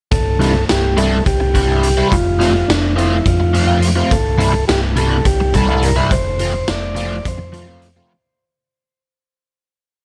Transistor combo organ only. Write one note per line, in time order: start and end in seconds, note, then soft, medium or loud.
0.11 0.65 A4 medium
0.70 0.99 G4 medium
0.97 1.24 A4 medium
1.27 2.08 G4 medium
2.12 2.71 F4 medium
2.68 2.95 D4 medium
2.98 3.27 E4 medium
3.27 3.87 F4 medium
4.12 4.65 A4 medium
4.68 4.81 G4 medium
4.98 5.27 A4 medium
5.26 5.55 G4 medium
5.56 5.84 A4 medium
5.84 5.96 A#4 loud
6.12 6.70 C5 medium
6.70 7.28 D5 loud
7.28 7.87 C5 medium